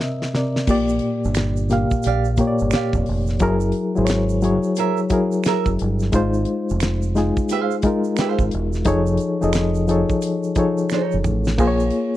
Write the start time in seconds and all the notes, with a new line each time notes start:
Already playing: C3 C4 A#4 D5 D#5 E5
0.01 snare
0.22 snare
0.34 C3 C4 A#4 D5, snare
0.56 snare
0.67 A#1 A#2 A#3 G4 D5, kick, crash, shaker
0.89 shaker
0.99 closed hi-hat
1.24 G1, shaker
1.34 finger snap, snare, closed hi-hat, shaker
1.56 shaker
1.69 A#2 A#3 G4 F5, snare, closed hi-hat, shaker
1.91 kick, shaker
2.03 A#1 G4 D5, closed hi-hat, shaker
2.07 F5
2.25 shaker
2.37 A#2 A#3 G4 C#5, kick, closed hi-hat, shaker
2.47 D5
2.59 G1, shaker
2.71 G4 D5 F5, finger snap, snare, closed hi-hat, shaker
2.93 F1, kick, shaker
3.06 F1, open hi-hat
3.27 snare, shaker
3.39 F#1 F#3 E4 G#4 A#4, kick, closed hi-hat, shaker
3.60 shaker
3.72 closed hi-hat
3.95 G#1 F#3 E4 G#4 C5, shaker
4.05 C#5, finger snap, closed hi-hat, shaker
4.10 snare
4.29 shaker
4.41 F#3 E4 G#4 C#5, closed hi-hat, shaker
4.63 shaker
4.76 G#4 A#4 E5, closed hi-hat, shaker
4.97 shaker
5.10 F#3 E4 G#4 A#4, kick, closed hi-hat, shaker
5.32 shaker
5.44 G#4 A#4, finger snap, snare, closed hi-hat, shaker
5.48 E5
5.66 F#1, kick, shaker
5.79 G1, closed hi-hat
5.99 snare, shaker
6.12 G#1 G#3 D#4 F4 C5, kick, closed hi-hat, shaker
6.34 shaker
6.45 closed hi-hat
6.69 F1, shaker
6.80 finger snap, snare, closed hi-hat, shaker
7.02 shaker
7.15 G#3 D#4 F4 G#4, snare, closed hi-hat, shaker
7.37 kick, shaker
7.49 G#4 C5 F5, closed hi-hat, shaker
7.71 shaker
7.82 G#3 D#4 F4, kick, closed hi-hat, shaker
7.87 A#4
8.04 shaker
8.17 G#4 C5 F5, finger snap, snare, closed hi-hat, shaker
8.39 G#1, kick, shaker
8.51 E1, closed hi-hat
8.73 snare, shaker
8.85 F1 F3 D#4 G#4 A4 C#5, kick, closed hi-hat, shaker
9.07 shaker
9.17 closed hi-hat, shaker
9.41 F1 F3 D#4 G#4 A4 D#5, shaker
9.53 finger snap, snare, closed hi-hat, shaker
9.75 shaker
9.88 F3 D#4 G#4 A4 C#5, closed hi-hat, shaker
10.10 kick, shaker
10.22 closed hi-hat, shaker
10.44 shaker
10.55 F3 D#4 G#4 A4 C#5, kick, closed hi-hat, shaker
10.78 shaker
10.90 D#4 A4, finger snap, snare, shaker
10.94 C#5
11.11 F#1, shaker
11.24 A1, mid tom, shaker
11.45 snare, shaker
11.58 A#1 A#3 F4 G#4 C5, kick, crash, shaker
11.67 C#5
11.80 shaker
11.90 closed hi-hat